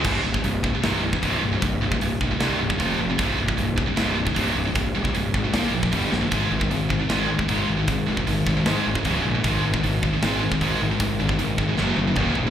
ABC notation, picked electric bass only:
X:1
M:4/4
L:1/8
Q:1/4=154
K:Cm
V:1 name="Picked electric bass" clef=bass
C,,, C,,, C,,,2 C,,,2 C,,, C,,, | C,,, C,,, C,,, C,,, C,, C,,, F,,, F,,, | C,,, C,,, C,,,2 C,,,2 C,,, C,,, | C,,, C,,, C,,, A,,, B,,, B,,, G,,, B,,, |
A,,, A,,, A,,,2 A,,,2 A,,, A,,, | A,,, A,,, A,,, A,,, A,, A,,, _D,,, B,,, | A,,, A,,, A,,,2 A,,,2 A,,, A,,, | A,,, A,,, A,,, A,,, ^F,,, F,,, E,,, E,,, |]